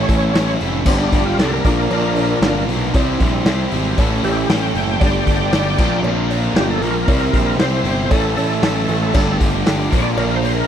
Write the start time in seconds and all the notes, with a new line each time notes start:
Already playing: A2 E3 A3 C#4 E4 C#5
0.09 A1 A3 C#4 E4 A4, kick, open hi-hat, cowbell
0.34 A1 A2 E3 A3 C#4 E4, snare, open hi-hat, cowbell
0.38 A4
0.60 F1 A3 C#4 E4 A4, open hi-hat
0.86 G1 G2 D3 G3 A3 C4 D4, kick, crash, cowbell
0.90 G4
1.00 D4
1.12 G1 D4 G4, kick, open hi-hat
1.16 G3
1.26 F4
1.37 C2 D3 G3 A3 A4, snare, open hi-hat, cowbell
1.42 D4 G4
1.53 A#4
1.65 A#1 A#2 D3 F3 A#3 C4 D4 F4 A#4, kick, open hi-hat
1.69 A#2
1.90 A#1 A#2 F3 A#3 D4 F4, open hi-hat, cowbell
1.94 A#4
2.16 A#3 D4 F4 A#4, open hi-hat, cowbell
2.41 G1 A#2 D3 F3 A#3 D4, snare, open hi-hat, cowbell
2.45 C4 F4 A#4
2.68 B1 C4 D4 F4 A#4, open hi-hat
2.73 A#3
2.94 C2 C3 E3 G3 C4 E4 G4 C5, kick, open hi-hat, cowbell
3.20 A#1 C4 E4 G4 C5, kick, open hi-hat
3.45 C2 E3 G3 C4 E4, snare, open hi-hat, cowbell
3.49 G4 C5
3.71 G#1 G3 E4 G4 C5, open hi-hat
3.76 C3 C4
3.98 A1 A2 E3 A3 C#4 E4 A4, kick, open hi-hat, cowbell
4.23 A1 C#4 E4 G4 A4, open hi-hat, cowbell
4.28 A3
4.49 A1 A2 E3 A3 C#4 E4 A4 G5, snare, open hi-hat, cowbell
4.75 F#1 A3 C#4 E4 A4, open hi-hat
5.00 G1 G2 D3 G3 A3 D4 G4 D5 G5, kick, open hi-hat, cowbell
5.26 G1 D4 G4, kick, open hi-hat
5.30 G3
5.52 G1 D3 G3 A3 D4 G4, snare, open hi-hat, cowbell
5.77 A#1 A#2 C4 D4 F4 A#4, kick, crash
5.81 A#2 F3 A#3
6.03 A#1 A#2 D3 F3 A#3 C4 D4, cowbell
6.07 F4 A#4
6.30 A#3 D4 F4 A#4, open hi-hat, cowbell
6.54 G1 A#2 D3 F3 A#3 C4 D4 F4 G4, snare, open hi-hat, cowbell
6.58 A#4
6.70 A4
6.81 A#1 A#3 C4 D4 F4 A#4, open hi-hat
7.07 C2 C3 E3 G3 C4 E4 G4 C5, kick, open hi-hat, cowbell
7.21 snare
7.33 A#1 E4 G4 C5, kick, open hi-hat
7.38 C4
7.56 C2 C4 B4, snare, open hi-hat, cowbell
7.61 E3 G3 E4 G4 C5
7.83 G1 E4 G4 C5, open hi-hat
7.88 C3 G3 C4
8.09 A1 A2 E3 A3 C#4 E4 A4, kick, open hi-hat, cowbell
8.36 A1 A3 C#4 E4 A4, open hi-hat, cowbell
8.63 A1 A2 E3 A3 C#4 E4 A4, snare, open hi-hat, cowbell
8.87 A1 A3 C#4 E4 A4, open hi-hat
9.12 G1 G2 D3 G3 A3 D4 G4, kick, crash, cowbell
9.38 G1 G3 D4 G4, kick, open hi-hat
9.64 G1 D3 G3 A3 D4 G4, snare, open hi-hat, cowbell
9.91 A#1 A#2 D3 F3 A#3 C4 D4 F4 A#4, kick, open hi-hat
9.98 C#5
10.02 D5
10.15 A#1 A#2 F3 A#3 D4 F4 A#4, open hi-hat, cowbell
10.36 C5
10.42 A#3 D4 F4 A#4, open hi-hat, cowbell
10.54 A#4